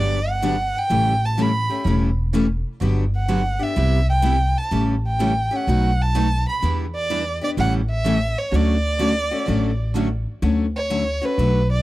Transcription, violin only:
0.00 0.32 D5 medium
0.30 0.80 F#5 medium
0.78 1.27 G5 loud
1.26 1.44 A5 medium
1.42 1.88 B5 medium
3.17 3.64 F#5 medium
3.63 4.09 E5 medium
4.09 4.59 G5 medium
4.58 4.73 A5 medium
5.07 5.57 G5 medium
5.56 6.03 F#5 medium
6.02 6.48 A5 medium
6.49 6.63 B5 medium
6.95 7.39 D5 medium
7.44 7.50 D5 medium
7.60 7.73 F#5 loud
7.91 8.40 E5 medium
8.38 8.57 C#5 medium
8.55 9.97 D5 loud
10.76 11.26 C#5 medium
11.25 11.71 B4 medium
11.72 11.82 D5 medium

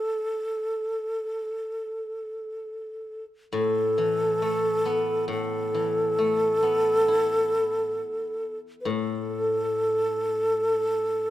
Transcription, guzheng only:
3.53 5.27 A2 medium
3.98 5.73 E3 soft
4.42 6.17 A3 soft
4.85 6.61 B3 soft
5.28 7.98 A2 medium
5.74 7.54 E3 soft
6.19 7.98 A3 soft
6.63 8.42 B3 soft
7.08 8.87 E4 soft
8.85 11.30 A2 medium

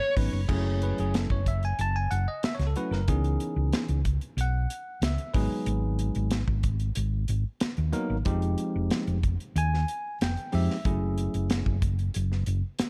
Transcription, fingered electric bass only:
0.17 0.32 G#1 medium
0.33 0.48 F#1 medium
0.49 0.91 F#1 medium
0.99 1.26 F#1 medium
1.30 1.72 F#1 medium
1.79 2.07 F#1 medium
2.11 2.25 F#1 medium
2.44 muted fingered electric bass stroke soft
2.59 2.73 C#2 medium
2.91 3.05 F#1 medium
3.08 3.36 C#2 medium
3.56 3.71 C#2 medium
3.89 4.17 C#2 medium
4.37 4.65 B1 loud
5.02 5.16 C#2 medium
5.35 5.49 G#1 medium
5.52 muted fingered electric bass stroke soft
5.67 6.09 G#1 loud
6.16 6.44 G#1 medium
6.48 6.89 G#1 medium
6.97 7.25 G#1 medium
7.29 7.43 G#1 medium
7.62 muted fingered electric bass stroke soft
7.78 7.92 D#2 medium
8.10 8.24 G#1 medium
8.26 8.54 F1 medium
8.76 8.89 F1 medium
9.08 9.35 F1 medium
9.56 9.83 D#2 loud
10.21 10.35 F1 medium
10.54 10.67 F2 medium
10.69 muted fingered electric bass stroke soft
10.85 11.27 F#1 medium
11.35 11.62 F#1 medium
11.66 12.08 F#1 medium
12.16 12.43 F#1 medium
12.47 12.61 F#1 medium
12.80 muted fingered electric bass stroke soft

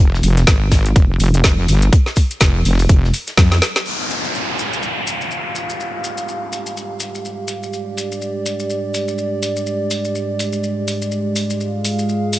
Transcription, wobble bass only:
0.00 0.22 F1 loud
0.23 0.46 F1 medium
0.47 0.94 G#1 medium
0.96 1.18 F1 loud
1.20 1.67 F1 loud
1.68 1.91 G1 medium
2.41 2.64 F1 loud
2.65 2.88 F1 loud
2.89 3.12 F1 loud
3.38 3.60 F2 medium

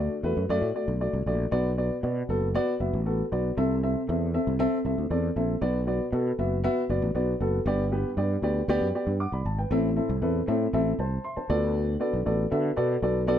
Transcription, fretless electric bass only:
0.23 0.33 E2 medium
0.37 0.46 F#2 medium
0.49 0.59 F#2 medium
0.62 0.71 A2 medium
0.88 1.06 B1 medium
1.13 1.23 C2 medium
1.26 1.45 A#1 medium
1.52 1.89 B1 loud
2.03 2.22 B2 medium
2.29 2.57 F#1 medium
2.80 2.90 F#1 medium
2.93 3.21 A1 medium
3.32 3.50 B1 medium
3.57 3.94 C2 loud
4.09 4.36 E2 loud
4.47 4.65 C2 medium
4.85 4.94 C2 medium
4.98 5.07 D2 medium
5.10 5.29 E2 medium
5.36 5.55 A#1 medium
5.62 5.99 B1 loud
6.12 6.31 B2 loud
6.39 6.66 F#1 medium
6.89 6.99 F#1 medium
7.02 7.11 A1 medium
7.15 7.34 B1 medium
7.40 7.59 F#1 medium
7.66 8.03 G1 loud
8.17 8.36 G2 medium
8.42 8.61 D2 medium
8.68 8.78 D2 medium
8.81 8.91 F#2 medium
9.07 9.25 G2 medium
9.32 9.42 C2 medium
9.45 9.64 G#1 medium
9.71 9.98 A1 loud
10.09 10.19 C2 medium
10.22 10.40 E2 loud
10.48 10.66 A2 loud
10.73 10.92 A1 loud
10.99 11.17 C2 medium
11.37 muted fretless electric bass stroke soft
11.50 11.96 D2 loud
12.13 12.23 B1 medium
12.27 12.45 A1 medium
12.52 12.70 D3 loud
12.77 12.96 B2 medium
13.02 13.39 B1 medium

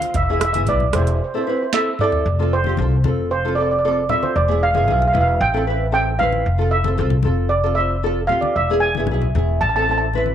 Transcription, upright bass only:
0.14 0.67 E1 medium
0.67 0.93 B1 medium
0.94 1.19 E1 medium
2.26 2.80 F1 medium
2.78 3.03 C2 loud
3.04 4.06 F1 medium
4.36 4.88 E1 medium
4.88 5.13 B1 medium
5.14 5.39 E1 medium
5.41 6.42 A1 loud
6.46 7.00 F1 medium
6.99 7.24 C2 loud
7.25 8.26 F1 medium
8.56 9.09 E1 medium
9.09 9.34 B1 loud
9.35 9.60 E1 medium
9.61 10.35 A1 loud

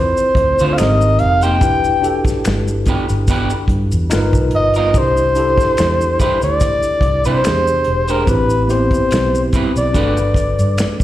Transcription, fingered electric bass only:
0.00 0.14 E2 medium
0.35 0.56 D2 medium
0.61 0.77 D3 loud
0.80 1.17 G#1 medium
1.21 1.62 F1 medium
1.62 2.22 E1 loud
2.46 2.83 G1 medium
3.10 3.47 G1 medium
3.68 3.90 G2 loud
3.93 4.10 E2 medium
4.12 4.32 G1 medium
4.33 4.51 B1 loud
4.54 4.91 G1 medium
4.95 5.55 C2 loud
5.79 6.16 E2 medium
6.43 6.81 D2 medium
7.01 7.23 C2 medium
7.26 7.47 C3 loud
7.45 7.83 E2 medium
7.87 8.25 E1 medium
8.28 8.88 A1 loud
9.12 9.50 B1 medium
9.76 9.93 B1 medium
9.95 10.33 G1 loud
10.35 10.56 G1 medium
10.59 10.76 G2 loud

